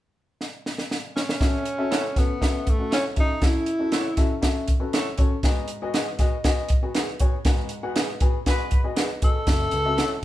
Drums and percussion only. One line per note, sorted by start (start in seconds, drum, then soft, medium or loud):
0.41 snare soft
0.66 snare medium
0.78 snare medium
0.91 snare medium
1.17 snare medium
1.29 snare medium
1.41 kick medium
1.41 snare loud
1.41 closed hi-hat medium
1.65 closed hi-hat medium
1.92 snare loud
1.92 closed hi-hat medium
2.16 kick medium
2.16 snare soft
2.16 closed hi-hat medium
2.42 kick medium
2.42 snare medium
2.42 closed hi-hat medium
2.67 kick medium
2.67 closed hi-hat medium
2.92 snare loud
2.92 closed hi-hat medium
3.16 kick medium
3.16 closed hi-hat medium
3.42 kick loud
3.42 snare loud
3.42 closed hi-hat medium
3.66 closed hi-hat medium
3.92 snare loud
3.92 closed hi-hat medium
4.17 kick medium
4.17 snare soft
4.17 closed hi-hat medium
4.43 kick medium
4.43 snare loud
4.43 closed hi-hat medium
4.68 kick medium
4.68 closed hi-hat medium
4.93 snare loud
4.93 closed hi-hat medium
5.18 kick medium
5.18 closed hi-hat medium
5.43 kick medium
5.43 snare medium
5.43 closed hi-hat medium
5.68 closed hi-hat medium
5.94 snare loud
5.94 closed hi-hat medium
6.19 kick medium
6.19 snare soft
6.19 closed hi-hat medium
6.44 kick medium
6.44 snare loud
6.44 closed hi-hat medium
6.69 kick medium
6.69 closed hi-hat medium
6.95 snare loud
6.95 closed hi-hat medium
7.20 kick medium
7.20 closed hi-hat medium
7.45 kick loud
7.45 snare loud
7.45 closed hi-hat medium
7.69 closed hi-hat medium
7.96 snare loud
7.96 closed hi-hat medium
8.20 kick medium
8.20 closed hi-hat medium
8.46 kick medium
8.46 snare medium
8.46 closed hi-hat medium
8.71 kick medium
8.71 closed hi-hat medium
8.97 snare loud
8.97 closed hi-hat medium
9.22 kick medium
9.22 closed hi-hat medium
9.47 kick loud
9.47 snare loud
9.47 closed hi-hat medium
9.47 tambourine loud
9.71 closed hi-hat medium
9.71 tambourine soft
9.98 snare loud
9.98 closed hi-hat medium
9.98 tambourine medium